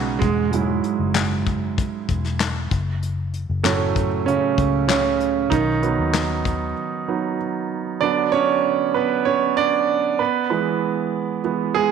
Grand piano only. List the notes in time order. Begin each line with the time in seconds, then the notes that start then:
Already playing: B2 C#3 G#3 B3 C#4 D#4
0.19 G#2 G#3
0.51 G#2 F#3 G#3 E4
3.63 A2 F#3 A3 C#4
4.26 C#3 C#4
4.88 C#3 C#4
5.50 D#3 D#4
5.83 F#3 B3 D#4
7.08 F#3 B3 D#4
8.01 D3 F#3 B3 D4 D5
8.32 C#4 C#5
8.94 B3 B4
9.25 C#4 C#5
9.57 D4 D5
10.19 B3 B4
10.50 E3 G#3 B3 B4
11.44 E3 G#3 B3
11.75 G#3 G#4